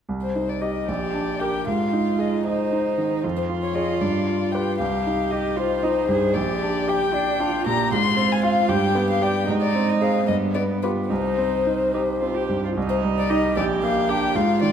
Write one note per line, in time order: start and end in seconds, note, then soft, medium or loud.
0.09 0.85 C2 soft
0.22 0.51 C5 soft
0.36 0.77 D#4 soft
0.49 0.63 D5 soft
0.61 0.85 G4 soft
0.61 0.90 D#5 soft
0.61 0.85 D#5 soft
0.87 1.64 A#1 soft
0.87 1.62 G4 soft
0.87 1.41 D5 soft
1.14 1.56 D4 soft
1.40 1.64 G4 soft
1.40 1.65 A#4 soft
1.40 1.66 G5 soft
1.67 3.20 G#2 soft
1.67 2.45 F4 soft
1.67 2.22 F5 soft
1.93 2.35 D#4 soft
2.18 2.61 G#4 soft
2.18 2.46 D#5 soft
2.45 3.25 D#4 soft
2.45 3.23 C5 soft
2.45 2.87 D#5 soft
2.72 3.14 D#4 soft
2.98 3.24 D#3 soft
3.24 3.99 F2 soft
3.24 4.79 F4 soft
3.37 3.45 C5 soft
3.50 3.91 F4 soft
3.63 3.76 C#5 soft
3.75 3.99 G#4 soft
3.75 3.99 C#5 soft
3.75 4.03 D#5 soft
4.01 4.78 G2 soft
4.01 4.54 D5 soft
4.27 4.69 F4 soft
4.52 4.78 G4 soft
4.52 4.78 B4 soft
4.52 4.78 G5 soft
4.79 6.31 C2 soft
4.79 5.58 G4 soft
4.79 5.32 F5 soft
5.07 5.48 D#4 soft
5.31 5.73 G4 soft
5.31 5.58 D#5 soft
5.56 5.85 F4 soft
5.56 6.35 C5 medium
5.56 5.99 C5 soft
5.83 6.25 D#4 soft
5.83 6.09 D#4 soft
6.09 6.35 G2 soft
6.09 6.36 G#4 soft
6.34 7.88 A#1 soft
6.34 7.16 G4 soft
6.34 6.90 D5 medium
6.62 7.05 D4 soft
6.88 7.30 G4 soft
6.88 7.66 G5 medium
7.14 7.42 D4 medium
7.14 7.56 D5 soft
7.40 7.82 D4 soft
7.40 7.68 F4 medium
7.66 7.92 A#2 soft
7.66 7.95 G4 soft
7.66 7.92 A#5 medium
7.92 8.67 G#2 soft
7.92 8.71 F4 medium
7.92 8.34 C6 medium
8.17 8.59 C4 soft
8.32 8.44 G#5 medium
8.43 8.67 F4 soft
8.43 8.67 F5 soft
8.43 8.71 F5 medium
8.69 9.45 G2 soft
8.69 9.48 G4 medium
8.69 9.09 G5 medium
8.95 9.37 B3 soft
9.10 9.24 F5 medium
9.22 9.45 G4 soft
9.22 9.46 D5 soft
9.22 9.49 G5 medium
9.48 10.26 G#2 soft
9.48 10.27 D#4 medium
9.62 9.91 D5 medium
9.75 10.17 C4 soft
9.90 10.03 D#5 medium
10.01 10.25 G#4 soft
10.01 10.26 C5 soft
10.01 10.27 F5 medium
10.28 11.08 G2 soft
10.28 11.11 B3 soft
10.28 10.36 D#5 medium
10.55 10.99 B3 soft
10.55 10.63 D5 soft
10.83 11.08 F4 soft
10.83 11.08 G4 soft
10.83 10.91 B4 medium
11.10 12.73 C2 soft
11.10 11.88 D#4 soft
11.10 12.47 C5 medium
11.38 11.82 C4 soft
11.67 12.11 D#4 soft
11.94 12.02 D#4 soft
11.94 12.38 G4 soft
12.20 12.66 C4 soft
12.20 12.36 F4 soft
12.35 12.63 G4 soft
12.49 12.77 G2 soft
12.65 12.70 F4 soft
12.77 13.54 C2 soft
12.77 13.53 D#4 medium
12.89 12.97 C5 medium
13.04 13.46 G3 soft
13.18 13.32 D5 medium
13.30 13.54 D#4 soft
13.30 13.50 D#4 soft
13.30 13.54 G4 soft
13.30 13.56 D#5 medium
13.57 14.33 A#1 soft
13.57 14.37 G4 medium
13.57 13.65 D5 medium
13.83 14.25 A#3 soft
13.83 14.10 F5 medium
14.09 14.33 D4 soft
14.09 14.29 G4 soft
14.09 14.33 G4 soft
14.09 14.37 G5 medium
14.35 14.72 G#2 soft
14.35 14.72 F4 medium
14.35 14.62 F5 medium
14.62 14.72 D#3 soft
14.62 14.72 D5 medium